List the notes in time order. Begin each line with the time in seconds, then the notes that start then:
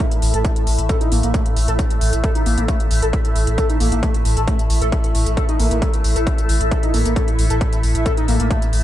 Already playing: A2 A3 E4 A4 E5
0.11 closed hi-hat
0.22 A1, open hi-hat
0.34 A1 A4, closed hi-hat
0.45 kick, closed hi-hat
0.56 closed hi-hat
0.67 A1, open hi-hat
0.79 A1, closed hi-hat
0.89 A4, kick, closed hi-hat
1.01 D#4, closed hi-hat
1.12 A1 A#3, open hi-hat
1.23 A1 A#3, closed hi-hat
1.34 A3, kick, closed hi-hat
1.46 closed hi-hat
1.56 A1, open hi-hat
1.68 A1 A4, closed hi-hat
1.79 kick, closed hi-hat
1.90 closed hi-hat
2.01 A1, open hi-hat
2.13 A1, closed hi-hat
2.24 A4, kick, closed hi-hat
2.35 D#4, closed hi-hat
2.46 A1 A#3, open hi-hat
2.58 A1 A#3, closed hi-hat
2.68 A3, kick, closed hi-hat
2.80 closed hi-hat
2.91 A1, open hi-hat
3.02 A1 A4, closed hi-hat
3.13 kick, closed hi-hat
3.25 closed hi-hat
3.36 A1, open hi-hat
3.47 A1, closed hi-hat
3.58 A4, kick, closed hi-hat
3.70 D#4, closed hi-hat
3.80 A1 A#3, open hi-hat
3.92 A1 A#3, closed hi-hat
4.03 A3, kick, closed hi-hat
4.14 closed hi-hat
4.25 A1, open hi-hat
4.37 A1 A4, closed hi-hat
4.48 A3, kick, closed hi-hat
4.59 closed hi-hat
4.70 A1, open hi-hat
4.82 A1 A4, closed hi-hat
4.92 kick, closed hi-hat
5.04 closed hi-hat
5.15 A1, open hi-hat
5.26 A1, closed hi-hat
5.37 A4, kick, closed hi-hat
5.49 D#4, closed hi-hat
5.59 A1 A#3, open hi-hat
5.71 A1 A#3, closed hi-hat
5.82 A3, kick, closed hi-hat
5.94 closed hi-hat
6.04 A1, open hi-hat
6.16 A1 A4, closed hi-hat
6.27 kick, closed hi-hat
6.38 closed hi-hat
6.49 A1, open hi-hat
6.61 A1, closed hi-hat
6.71 A4, kick, closed hi-hat
6.83 D#4, closed hi-hat
6.94 A1 A#3, open hi-hat
7.05 A1 A#3, closed hi-hat
7.16 A3, kick, closed hi-hat
7.28 closed hi-hat
7.39 A1, open hi-hat
7.50 A1 A4, closed hi-hat
7.61 kick, closed hi-hat
7.73 closed hi-hat
7.83 A1, open hi-hat
7.95 A1, closed hi-hat
8.06 A4, kick, closed hi-hat
8.17 D#4, closed hi-hat
8.28 A1 A#3, open hi-hat
8.40 A1 A#3, closed hi-hat
8.51 A3, kick, closed hi-hat
8.62 closed hi-hat
8.73 A1, open hi-hat